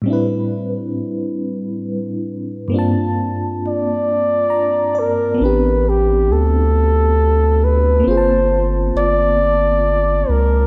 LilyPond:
<<
  \new Staff \with { instrumentName = "Flugelhorn" } { \time 6/8 \key a \phrygian \tempo 4. = 45 r2. | r4 d''4. bes'8 | b'8 g'8 a'4. b'8 | c''8 r8 d''4. bes'8 | }
  \new Staff \with { instrumentName = "FM electric piano" } { \time 6/8 \key a \phrygian << { r2. | r2 bes''8 d''8 | r2. | r2. | } \\ { <a, g c' d' e' b'>2. | <g, bes c' d' f' a''>2. | <b c' d' g'>2. | <bes c' f' gis' a''>2. | } >> }
  \new Staff \with { instrumentName = "Analog synth bass" } { \clef bass \time 6/8 \key a \phrygian r2. | r2. | a,,4 d,2 | g,,4 g,,4. cis,8 | }
>>